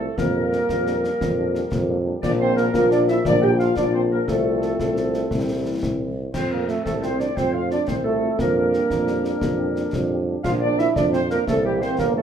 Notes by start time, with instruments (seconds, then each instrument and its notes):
Already playing: trombone section F3 A3, euphonium A3, trumpet section A4, woodwind section A4
0.01 french horn section A3 F4 A4
0.17 tuba F2, trombone section G3 A#3, euphonium A#3, woodwind section A#4, trumpet section A#4, concert bass drum, snare
0.35 french horn section A#3 D4 G4
0.52 french horn section A#3 D4 G4, snare
0.69 tuba F2, concert bass drum, snare
0.86 french horn section A#3 D4 G4, snare
1.04 french horn section A#3 D4 G4, snare
1.21 tuba F2, concert bass drum, snare
1.38 french horn section A#3 D4 G4
1.55 french horn section A#3 D4 G4, snare
1.72 tuba F2, concert bass drum, snare
1.89 french horn section A#3 D4 G4
2.05 french horn section A#3 D4 G4
2.23 tuba A#1, trombone section F3 A#3, french horn section A#3 D4 F4, euphonium D4, woodwind section D5, trumpet section D5, concert bass drum, snare, crash
2.40 euphonium C4, trumpet section C5, woodwind section C5
2.57 euphonium A#3, woodwind section A#4, trumpet section A#4, snare
2.74 tuba A#1, french horn section A#3 D4 F4, euphonium A#3, trumpet section A#4, woodwind section A#4, concert bass drum, snare
2.91 euphonium D4, trumpet section D5, woodwind section D5, snare
3.08 euphonium E4, trumpet section E5, woodwind section E5, snare
3.25 tuba A#1, french horn section A#3 D4 F4, euphonium D4, woodwind section D5, trumpet section D5, concert bass drum, snare
3.42 euphonium G4, woodwind section G5, trumpet section G5
3.59 euphonium F4, woodwind section F5, trumpet section F5, snare
3.76 tuba A#1, french horn section A#3 D4 F4, euphonium D4, woodwind section D5, trumpet section D5, concert bass drum, snare
3.93 euphonium C4, woodwind section C5, trumpet section C5
4.11 euphonium A#3, trumpet section A#4, woodwind section A#4
4.27 tuba C2, trombone section F3 C4, euphonium A3, french horn section A3 C4 F4, woodwind section A4, trumpet section A4, concert bass drum, snare
4.62 snare
4.80 tuba C2, concert bass drum, snare
4.96 snare
5.14 snare
5.31 tuba C2, trombone section E3, french horn section G3 C4 E4, concert bass drum, snare
5.83 tuba C2, concert bass drum, snare
6.34 tuba F2, trombone section A3 C4, euphonium C4, trumpet section C5, woodwind section C5, concert bass drum, snare, crash
6.51 french horn section A3 C4 F4, euphonium A#3, woodwind section A#4, trumpet section A#4
6.68 euphonium A3, french horn section A3 C4 F4, trumpet section A4, woodwind section A4, snare
6.84 tuba C2, euphonium A3, woodwind section A4, trumpet section A4, concert bass drum, snare
7.02 french horn section A3 C4 F4, euphonium C4, woodwind section C5, trumpet section C5, snare
7.19 french horn section A3 C4 F4, euphonium D4, woodwind section D5, trumpet section D5, snare
7.36 tuba F2, euphonium C4, woodwind section C5, trumpet section C5, concert bass drum, snare
7.52 french horn section A3 C4 F4, euphonium F4, woodwind section F5, trumpet section F5
7.71 french horn section A3 C4 F4, euphonium D4, woodwind section D5, trumpet section D5, snare
7.87 tuba C2, euphonium C4, woodwind section C5, trumpet section C5, concert bass drum, snare
8.04 french horn section A3 C4 F4, euphonium A3, woodwind section A4, trumpet section A4
8.22 french horn section A3 C4 F4
8.39 tuba F2, trombone section G3 D4, euphonium A#3, woodwind section A#4, trumpet section A#4, concert bass drum, snare
8.56 french horn section A#3 D4 G4
8.73 french horn section A#3 D4 G4, snare
8.90 tuba F2, concert bass drum, snare
9.07 french horn section A#3 D4 G4, snare
9.25 french horn section A#3 D4 G4, snare
9.41 tuba F2, concert bass drum, snare
9.59 french horn section A#3 D4 G4
9.76 french horn section A#3 D4 G4, snare
9.93 tuba F2, concert bass drum, snare
10.10 french horn section A#3 D4 G4
10.28 french horn section A#3 D4 G4
10.44 tuba A#1, trombone section F3 D4, euphonium F4, woodwind section F5, trumpet section F5, concert bass drum, snare, crash
10.61 french horn section A#3 D4 F4, euphonium D4, woodwind section D5, trumpet section D5
10.79 french horn section A#3 D4 F4, euphonium E4, woodwind section E5, trumpet section E5, snare
10.95 tuba F2, euphonium D4, trumpet section D5, woodwind section D5, concert bass drum, snare
11.13 french horn section A#3 D4 F4, euphonium C4, trumpet section C5, woodwind section C5, snare
11.30 euphonium A#3, french horn section A#3 D4 F4, woodwind section A#4, trumpet section A#4, snare
11.47 tuba C2, trombone section E3 A#3, euphonium A3, trumpet section A4, woodwind section A4, concert bass drum, snare
11.65 euphonium G3, french horn section A#3 C4 E4, trumpet section G4, woodwind section G4
11.81 french horn section A#3 C4 E4, euphonium C4, trumpet section C5, woodwind section C5, snare
11.98 tuba G1, euphonium A#3, trumpet section A#4, woodwind section A#4, concert bass drum, snare
12.16 euphonium A3, french horn section A#3 C4 E4, trumpet section A4, woodwind section A4